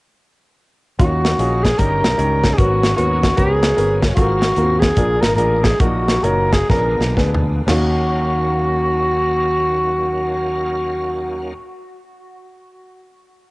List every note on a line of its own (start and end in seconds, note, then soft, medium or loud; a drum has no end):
0.98 1.33 D#2 medium
0.98 1.60 D#3 medium
0.98 2.58 D#3 medium
0.98 1.79 F#3 medium
0.98 1.78 A#3 medium
0.98 1.31 C#4 medium
0.98 4.15 C#4 medium
0.98 1.31 D#4 medium
0.98 1.31 F4 medium
0.98 1.64 F#4 medium
0.98 1.31 F#4 medium
0.98 1.79 F5 medium
0.98 kick loud
0.98 closed hi-hat medium
1.25 snare medium
1.25 closed hi-hat medium
1.39 1.73 A#1 medium
1.39 1.71 C#4 medium
1.39 1.71 D#4 medium
1.39 1.71 F4 medium
1.39 1.71 G#4 medium
1.39 closed hi-hat medium
1.63 1.79 G#4 medium
1.63 kick medium
1.63 snare loud
1.63 closed hi-hat medium
1.78 2.00 G1 medium
1.78 2.40 G2 medium
1.78 2.57 G3 medium
1.78 4.15 A#3 soft
1.78 2.11 C#4 medium
1.78 2.11 D#4 medium
1.78 2.11 G4 medium
1.78 2.58 G4 medium
1.78 2.54 A#4 medium
1.78 2.11 A#4 medium
1.78 kick medium
1.78 closed hi-hat medium
2.03 2.16 B1 medium
2.03 snare loud
2.03 closed hi-hat medium
2.18 2.52 C#2 medium
2.18 2.50 C#4 medium
2.18 2.50 D#4 medium
2.18 2.50 G4 medium
2.18 2.50 C#5 medium
2.18 closed hi-hat medium
2.44 kick medium
2.44 snare medium
2.44 closed hi-hat soft
2.53 2.59 G#4 medium
2.57 2.92 G#1 medium
2.57 3.19 G#2 medium
2.57 4.16 F#3 medium
2.57 2.90 B3 medium
2.57 4.16 B3 medium
2.57 2.90 C#4 medium
2.57 2.96 F#4 medium
2.57 2.90 F#4 medium
2.57 4.16 G#4 medium
2.57 2.90 A#4 medium
2.57 kick loud
2.57 closed hi-hat medium
2.84 snare medium
2.84 closed hi-hat medium
2.96 3.32 D#2 medium
2.96 3.30 B3 medium
2.96 3.30 C#4 medium
2.96 3.38 F#4 medium
2.96 3.30 F#4 medium
2.96 3.30 A#4 medium
2.96 closed hi-hat medium
3.23 kick medium
3.23 snare medium
3.23 closed hi-hat medium
3.37 3.72 C#2 medium
3.37 3.69 B3 medium
3.37 3.69 C#4 medium
3.37 3.69 F#4 medium
3.37 3.54 G4 medium
3.37 3.69 A#4 medium
3.37 kick medium
3.37 closed hi-hat medium
3.54 4.02 G#4 medium
3.63 snare loud
3.63 closed hi-hat medium
3.77 4.11 G1 medium
3.77 4.09 B3 medium
3.77 4.09 C#4 medium
3.77 4.09 F#4 medium
3.77 4.09 A#4 medium
3.77 closed hi-hat medium
4.02 kick medium
4.02 snare medium
4.02 closed hi-hat soft
4.14 4.51 G#1 medium
4.14 4.78 G#2 medium
4.14 4.96 F#3 medium
4.14 5.79 A#3 medium
4.14 4.49 C4 medium
4.14 4.96 C4 medium
4.14 4.49 F4 medium
4.14 4.80 F#4 medium
4.14 4.49 F#4 medium
4.14 5.79 G#4 medium
4.14 4.23 A4 medium
4.14 4.96 F5 medium
4.14 kick loud
4.14 closed hi-hat medium
4.22 4.52 A#4 medium
4.42 snare medium
4.42 closed hi-hat medium
4.56 4.91 D#2 medium
4.56 4.63 A#3 medium
4.56 4.90 F4 medium
4.56 4.90 F#4 medium
4.56 4.90 A#4 medium
4.56 closed hi-hat medium
4.62 4.92 C4 medium
4.79 5.22 G#4 medium
4.79 kick medium
4.79 snare medium
4.79 closed hi-hat medium
4.96 5.19 A#1 loud
4.96 5.61 A#2 medium
4.96 5.79 F3 medium
4.96 5.79 G#3 medium
4.96 5.79 D4 soft
4.96 5.30 D4 medium
4.96 5.30 F4 medium
4.96 5.30 G#4 medium
4.96 5.30 A#4 medium
4.96 kick medium
4.96 closed hi-hat medium
5.21 5.35 G#1 medium
5.21 5.35 A#4 medium
5.21 snare medium
5.21 closed hi-hat medium
5.36 5.73 A1 medium
5.36 5.72 D4 medium
5.36 5.72 F4 medium
5.36 5.72 G#4 medium
5.36 5.65 A#4 medium
5.36 5.72 A#4 medium
5.36 closed hi-hat medium
5.63 5.81 G#4 medium
5.63 kick medium
5.63 snare loud
5.63 closed hi-hat soft
5.79 6.17 A#1 medium
5.79 6.49 A#2 medium
5.79 6.69 F#3 medium
5.79 7.67 A#3 medium
5.79 6.16 A#3 medium
5.79 6.69 D#4 medium
5.79 6.16 D#4 medium
5.79 6.24 F#4 medium
5.79 6.16 F#4 medium
5.79 6.16 A#4 medium
5.79 kick loud
5.79 closed hi-hat medium
6.08 snare medium
6.08 closed hi-hat medium
6.23 6.62 F#1 medium
6.23 6.61 A#3 medium
6.23 6.61 D#4 medium
6.23 6.61 F#4 medium
6.23 6.54 A#4 medium
6.23 6.61 C#5 medium
6.23 closed hi-hat medium
6.52 6.69 G#4 medium
6.52 kick medium
6.52 snare medium
6.52 closed hi-hat medium
6.69 6.95 A#1 medium
6.69 7.45 A#2 medium
6.69 7.67 D3 medium
6.69 7.67 G#3 soft
6.69 7.08 B3 medium
6.69 7.67 B3 soft
6.69 6.77 C#4 medium
6.69 7.68 F4 medium
6.69 7.08 G#4 medium
6.69 7.14 A#4 medium
6.69 7.08 A#4 medium
6.69 kick medium
6.69 snare soft
6.74 7.11 D4 medium
7.00 7.15 B1 medium
7.00 snare medium
7.17 7.60 D2 medium
7.17 7.58 B3 medium
7.17 7.58 D4 medium
7.17 7.58 G#4 medium
7.17 7.58 B4 medium
7.17 kick medium
7.17 snare medium
7.35 floor tom medium
7.66 11.53 D#2 medium
7.66 11.55 D#2 medium
7.66 11.54 D#3 medium
7.66 11.54 F#3 medium
7.66 11.54 A#3 medium
7.66 11.52 C#4 medium
7.66 11.54 C#4 medium
7.66 11.54 D#4 medium
7.66 11.54 F#4 medium
7.66 11.54 F5 medium
7.66 11.55 F5 medium
7.66 snare loud
7.66 floor tom medium
7.66 crash medium
7.71 11.57 F#4 medium